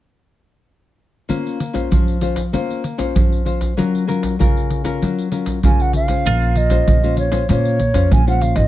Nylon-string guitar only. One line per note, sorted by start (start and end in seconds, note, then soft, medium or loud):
1.29 1.88 A#3 medium
1.29 1.58 C#4 soft
1.29 1.59 F4 medium
1.29 1.59 C5 soft
1.73 2.16 C#4 soft
1.73 2.16 F4 medium
1.73 2.17 C5 medium
1.91 2.50 F3 medium
2.21 2.40 C#4 soft
2.21 2.40 F4 medium
2.21 2.41 C5 medium
2.53 3.12 A#3 medium
2.53 2.83 C#4 soft
2.53 2.83 F4 soft
2.53 2.83 C5 medium
2.98 3.41 C#4 medium
2.98 3.41 F4 soft
2.98 3.41 C5 medium
3.15 3.74 F3 medium
3.45 3.72 C#4 soft
3.45 3.72 F4 soft
3.45 3.72 C5 soft
3.77 4.36 F#3 medium
3.77 4.04 C#4 medium
3.77 4.04 F4 medium
3.77 4.04 A#4 medium
4.07 4.34 C#4 soft
4.07 4.34 F4 soft
4.07 4.35 A#4 medium
4.39 4.99 C#3 medium
4.39 4.81 C#4 soft
4.39 4.81 F4 medium
4.39 4.82 A#4 medium
4.84 5.27 C#4 soft
4.84 5.27 F4 medium
4.84 5.27 A#4 medium
5.02 5.61 F#3 medium
5.32 5.58 C#4 soft
5.32 5.59 F4 soft
5.32 5.59 A#4 soft
5.64 6.23 C#3 medium
5.64 6.06 C#4 medium
5.64 6.06 F4 medium
5.64 6.06 A#4 medium
6.09 6.51 C#4 soft
6.09 6.51 F4 soft
6.09 6.52 C5 medium
6.26 6.85 A#3 medium
6.70 6.97 C#4 medium
6.70 6.98 F4 medium
6.70 6.98 C5 medium
6.88 7.47 F3 soft
7.04 7.29 C#4 soft
7.04 7.30 F4 medium
7.04 7.30 C5 medium
7.32 7.44 C#4 medium
7.32 7.44 F4 medium
7.32 7.44 C5 medium
7.49 8.08 A#3 medium
7.49 7.79 C#4 medium
7.49 7.79 F4 medium
7.49 7.79 C5 medium
7.94 8.21 C#4 medium
7.94 8.21 F4 medium
7.94 8.21 C5 medium
8.11 8.68 F3 soft
8.27 8.68 C#4 soft
8.27 8.68 F4 medium
8.27 8.68 C5 medium